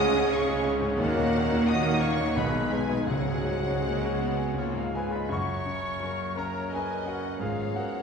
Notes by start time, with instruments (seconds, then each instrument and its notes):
Already playing: grand piano C#2 G#2 C#4 G#4 C#5, double bass section C#2, trombone section C#3 G#3, cello section C#3, viola section G#3 C#4, french horn section C#4 G#4, violin section C#4 G#4 D#6, clarinet D#5, flute F#5
0.12 grand piano G#5
0.31 trombone section C#3 G#3, french horn section C#4 G#4, grand piano C#5, clarinet C#5, flute F5, violin section C#6
0.49 grand piano G#4
0.65 grand piano C#4
0.81 grand piano G#2
0.97 grand piano D#2, double bass section D#2, trombone section A#2 A#3, cello section D#3, viola section D#3 A#3, french horn section C#4 D#4, violin section F#4 F#5, clarinet F#4, flute A#4
1.17 grand piano A#2
1.34 grand piano A#3
1.48 grand piano C#4
1.66 trombone section A#2, french horn section C#4 D#4, grand piano F#4, clarinet D#5, flute F#5, violin section D#6
1.71 trombone section A#3
1.84 grand piano A#4
2.00 grand piano C#5, clarinet C#5, flute F5, violin section C#6
2.19 grand piano F#5
2.35 grand piano B1, double bass section B1, cello section B2, trombone section B2 G#3, viola section G#3, french horn section B3 D#4, violin section D#4 G#4 B5, clarinet B4, flute D#5
2.53 grand piano B2
2.71 grand piano G#3, clarinet G#4, flute B4, violin section G#5
2.90 grand piano D#4
3.07 grand piano C#2, double bass section C#2, cello section C#3, viola section F#3, trombone section G#3, french horn section C#4 F#4, violin section C#4 F#5, clarinet F#4, flute C#5
3.11 trombone section G#2, timpani C#3
3.26 grand piano G#2
3.44 grand piano G#3
3.63 grand piano F#4
3.82 viola section A#3, grand piano G#4
4.00 grand piano F#4
4.19 viola section B3, grand piano F#5
4.36 grand piano G#5
4.54 grand piano C#2, trombone section G#2 G#3, french horn section C#4 F4, clarinet C#4, violin section C#5
4.58 viola section A#3, grand piano F4 C#5, flute C#5
4.73 grand piano G#2, clarinet F4, violin section F5, flute F5
4.78 grand piano G#4 F5
4.93 grand piano G#3 B4 G#5, viola section G#3, clarinet G#4, violin section G#5, flute G#5
5.11 grand piano F4, clarinet B4, violin section B5, flute B5
5.16 grand piano D#5 B5
5.29 double bass section F#1, grand piano F#2, cello section F#2, french horn section A#3 C#4, clarinet C#5, flute C#6, violin section C#6
5.33 grand piano F#5 C#6
5.66 grand piano C#3
6.00 grand piano F#3, viola section C#4 A#4, violin section A#4
6.36 grand piano C#4 A#5, clarinet A#4, violin section C#5 A#5, flute A#5
6.40 grand piano C#5
6.69 clarinet G#4, grand piano A#4, violin section D#5 G#5, flute G#5
6.75 viola section C#4 A#4, grand piano B4 G#5
7.03 grand piano C#4, flute F#5
7.08 clarinet F#4, grand piano A#4 F#5, violin section F#5
7.39 double bass section G#1, grand piano G#2 G#4 F5, cello section G#2, french horn section B3, clarinet F4, violin section C#5 F5, flute F5
7.73 grand piano G#3 F#5, clarinet F#4, flute F#5, violin section F#5
7.77 grand piano A#4